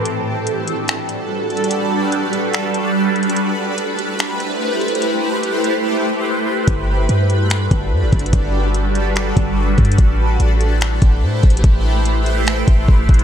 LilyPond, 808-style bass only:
\new Staff \with { instrumentName = "808-style bass" } { \clef bass \time 4/4 \key g \major \tempo 4 = 145 r1 | r1 | r1 | r1 |
g,,4 g,4. g,,8 g,16 g,,16 g,,8 | g,,2~ g,,8 g,,4 g,8 | a,,4 a,,4. a,,8 a,8 a,,8 | a,,2~ a,,8 a,,8 a,,8 a,,8 | }